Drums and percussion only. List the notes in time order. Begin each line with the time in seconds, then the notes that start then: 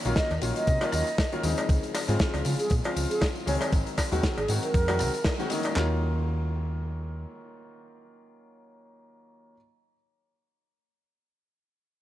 0.05 closed hi-hat, tambourine
0.16 kick, snare, closed hi-hat, tambourine
0.31 closed hi-hat, tambourine, cowbell
0.42 open hi-hat, tambourine
0.56 closed hi-hat, tambourine
0.67 kick, closed hi-hat, tambourine
0.81 cross-stick, closed hi-hat, tambourine, cowbell
0.92 cross-stick, open hi-hat, tambourine
1.07 closed hi-hat, tambourine
1.18 kick, snare, closed hi-hat, tambourine, cowbell
1.32 closed hi-hat, tambourine
1.43 open hi-hat, tambourine
1.58 closed hi-hat, tambourine, cowbell
1.69 kick, closed hi-hat, tambourine
1.83 closed hi-hat, tambourine
1.95 cross-stick, open hi-hat, tambourine, cowbell
2.08 closed hi-hat, tambourine
2.19 kick, snare, closed hi-hat, tambourine
2.34 closed hi-hat, tambourine, cowbell
2.45 open hi-hat, tambourine
2.59 closed hi-hat, tambourine
2.70 kick, closed hi-hat, tambourine
2.84 closed hi-hat, tambourine, cowbell
2.97 open hi-hat, tambourine
3.11 closed hi-hat, tambourine
3.21 kick, snare, closed hi-hat, tambourine, cowbell
3.36 closed hi-hat, tambourine
3.47 open hi-hat, tambourine
3.61 cross-stick, closed hi-hat, tambourine, cowbell
3.73 kick, closed hi-hat, tambourine
3.87 closed hi-hat, tambourine
3.98 kick, cross-stick, open hi-hat, tambourine, cowbell
4.12 closed hi-hat, tambourine
4.23 kick, snare, closed hi-hat, tambourine
4.38 closed hi-hat, tambourine, cowbell
4.48 open hi-hat, tambourine
4.63 closed hi-hat, tambourine
4.74 kick, closed hi-hat, tambourine
4.88 cross-stick, closed hi-hat, tambourine, cowbell
4.99 cross-stick, open hi-hat, tambourine
5.14 closed hi-hat, tambourine
5.24 kick, snare, closed hi-hat, tambourine, cowbell
5.40 closed hi-hat, tambourine
5.50 open hi-hat, tambourine
5.63 closed hi-hat, tambourine, cowbell
5.76 snare, clap